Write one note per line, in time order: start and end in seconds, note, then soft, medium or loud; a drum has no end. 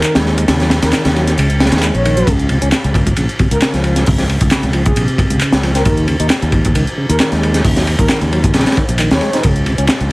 0.03 0.15 D#3 medium
0.03 0.11 A#4 medium
0.03 clap loud
0.03 closed hi-hat medium
0.03 ride medium
0.15 0.45 D#2 medium
0.15 0.37 G#3 medium
0.15 snare loud
0.15 closed hi-hat soft
0.15 ride medium
0.26 snare soft
0.38 0.45 G#3 medium
0.38 closed hi-hat medium
0.38 ride medium
0.48 0.79 D#2 loud
0.48 0.59 C#3 medium
0.48 snare loud
0.48 closed hi-hat medium
0.48 ride medium
0.60 0.68 F#3 medium
0.60 snare medium
0.60 closed hi-hat soft
0.70 snare loud
0.70 ride medium
0.82 0.91 D#2 medium
0.82 0.89 A#4 medium
0.82 snare loud
0.82 closed hi-hat medium
0.82 ride medium
0.93 1.04 D#3 medium
0.93 1.01 A#4 medium
0.93 snare loud
0.93 clap loud
0.93 closed hi-hat medium
0.93 ride medium
1.05 1.35 D#2 loud
1.05 1.12 C#3 medium
1.05 snare loud
1.05 closed hi-hat soft
1.05 ride medium
1.15 1.24 F#3 medium
1.15 snare soft
1.15 ride medium
1.27 snare soft
1.27 closed hi-hat medium
1.38 1.68 C#2 medium
1.38 1.49 C#3 medium
1.38 closed hi-hat medium
1.38 ride medium
1.50 closed hi-hat soft
1.60 snare medium
1.60 ride medium
1.66 snare medium
1.66 ride medium
1.72 1.90 D#2 loud
1.72 snare medium
1.72 closed hi-hat medium
1.72 ride medium
1.77 snare loud
1.77 ride medium
1.83 1.94 G#3 medium
1.83 clap loud
1.83 closed hi-hat medium
1.83 ride medium
1.95 2.24 A#1 loud
1.95 2.32 C#5 loud
1.95 closed hi-hat soft
2.05 2.16 D#3 medium
2.05 ride medium
2.17 2.26 F#3 loud
2.17 closed hi-hat medium
2.27 2.58 C#2 loud
2.27 2.49 C#3 loud
2.27 kick loud
2.27 closed hi-hat medium
2.27 ride medium
2.39 closed hi-hat soft
2.49 2.58 C3 medium
2.49 ride medium
2.62 2.70 C#2 medium
2.62 2.69 C#4 medium
2.62 closed hi-hat medium
2.72 snare loud
2.72 clap loud
2.72 closed hi-hat medium
2.72 ride medium
2.84 3.14 C#2 loud
2.84 closed hi-hat soft
2.94 kick loud
2.94 ride medium
3.07 kick medium
3.07 closed hi-hat medium
3.16 3.27 A#1 medium
3.16 3.25 C#3 medium
3.16 closed hi-hat medium
3.16 ride medium
3.29 closed hi-hat soft
3.39 3.48 C3 medium
3.39 kick medium
3.39 ride medium
3.51 3.60 C#2 loud
3.51 3.58 A#4 medium
3.51 closed hi-hat medium
3.62 3.73 C#3 medium
3.62 3.69 A#4 medium
3.62 snare loud
3.62 clap loud
3.62 closed hi-hat medium
3.62 ride medium
3.74 4.03 C#2 medium
3.74 3.95 F3 medium
3.74 snare medium
3.74 closed hi-hat soft
3.84 ride medium
3.96 4.03 F3 medium
3.96 snare soft
3.96 closed hi-hat medium
4.06 4.38 C#2 loud
4.06 4.17 C3 medium
4.06 kick loud
4.06 closed hi-hat medium
4.06 open hi-hat medium
4.18 4.26 F3 medium
4.18 snare medium
4.18 closed hi-hat soft
4.29 ride medium
4.41 4.49 C#2 medium
4.41 kick loud
4.41 closed hi-hat medium
4.51 4.63 C#3 medium
4.51 snare loud
4.51 clap loud
4.51 closed hi-hat medium
4.51 ride medium
4.63 4.93 C#2 loud
4.63 4.71 C3 medium
4.63 closed hi-hat soft
4.73 4.82 F3 medium
4.73 ride medium
4.86 5.04 G#4 medium
4.86 kick loud
4.86 closed hi-hat medium
4.96 5.06 A#1 medium
4.96 5.40 C3 medium
4.96 closed hi-hat medium
4.96 ride medium
5.08 closed hi-hat soft
5.18 kick medium
5.18 ride medium
5.30 5.39 C#2 loud
5.30 closed hi-hat medium
5.41 5.52 C#3 medium
5.41 clap loud
5.41 closed hi-hat medium
5.41 ride medium
5.52 5.82 C#2 medium
5.52 snare loud
5.52 closed hi-hat soft
5.63 5.72 F3 medium
5.63 snare soft
5.63 ride medium
5.75 5.82 C4 loud
5.75 5.82 A#4 medium
5.75 snare soft
5.75 closed hi-hat medium
5.85 6.16 D#2 loud
5.85 6.07 D#3 loud
5.85 5.93 A#4 medium
5.85 kick loud
5.85 closed hi-hat medium
5.85 ride medium
5.97 closed hi-hat soft
6.08 6.16 C#3 medium
6.08 ride medium
6.20 6.28 D#2 medium
6.20 6.27 D#4 medium
6.20 closed hi-hat medium
6.30 snare loud
6.30 clap loud
6.30 closed hi-hat medium
6.30 ride loud
6.42 6.72 D#2 loud
6.42 closed hi-hat soft
6.52 kick medium
6.52 ride medium
6.65 kick loud
6.65 closed hi-hat medium
6.75 6.85 C#2 medium
6.75 6.84 D#3 medium
6.75 closed hi-hat medium
6.75 ride medium
6.87 closed hi-hat soft
6.98 7.06 C#3 medium
7.09 7.18 D#2 loud
7.09 7.16 A#4 medium
7.09 closed hi-hat medium
7.20 7.31 D#3 medium
7.20 7.27 A#4 medium
7.20 snare loud
7.20 clap loud
7.20 closed hi-hat medium
7.20 ride medium
7.32 7.61 D#2 medium
7.32 7.53 G#3 medium
7.32 snare soft
7.32 closed hi-hat soft
7.43 ride medium
7.54 7.62 G#3 medium
7.54 snare soft
7.54 closed hi-hat medium
7.64 7.95 D#2 medium
7.64 7.75 C#3 medium
7.64 kick loud
7.64 closed hi-hat medium
7.64 open hi-hat medium
7.77 7.84 F#3 medium
7.77 snare medium
7.77 closed hi-hat soft
7.87 ride medium
7.99 8.07 D#2 medium
7.99 8.05 A#4 medium
7.99 kick loud
7.99 closed hi-hat medium
8.09 8.21 D#3 medium
8.09 8.17 A#4 medium
8.09 snare loud
8.09 clap loud
8.09 closed hi-hat medium
8.09 ride medium
8.21 8.51 D#2 loud
8.21 8.29 C#3 medium
8.21 closed hi-hat soft
8.32 8.40 F#3 medium
8.32 ride medium
8.44 kick loud
8.44 closed hi-hat medium
8.54 8.64 A#1 loud
8.54 8.65 C#3 medium
8.54 snare medium
8.54 closed hi-hat medium
8.54 ride medium
8.60 snare medium
8.60 ride medium
8.66 snare medium
8.66 closed hi-hat soft
8.66 ride medium
8.72 snare medium
8.72 ride medium
8.77 8.85 D#3 medium
8.77 kick medium
8.77 ride medium
8.89 9.06 A#1 loud
8.89 closed hi-hat medium
8.98 9.10 D#3 loud
8.98 clap loud
8.98 closed hi-hat medium
8.98 ride loud
9.11 9.19 D#2 medium
9.11 9.49 C#5 loud
9.11 snare loud
9.11 closed hi-hat soft
9.21 9.30 G#3 medium
9.21 snare soft
9.21 ride medium
9.33 9.43 D#4 loud
9.33 snare soft
9.33 closed hi-hat medium
9.43 9.75 C#2 loud
9.43 9.65 C#3 loud
9.43 kick loud
9.43 closed hi-hat soft
9.43 ride medium
9.56 closed hi-hat soft
9.66 9.75 C3 medium
9.66 ride medium
9.78 9.87 C#2 medium
9.78 9.85 C#4 medium
9.78 closed hi-hat medium
9.88 snare loud
9.88 clap loud
9.88 closed hi-hat medium
9.88 ride medium
10.00 10.12 C#2 loud
10.00 closed hi-hat soft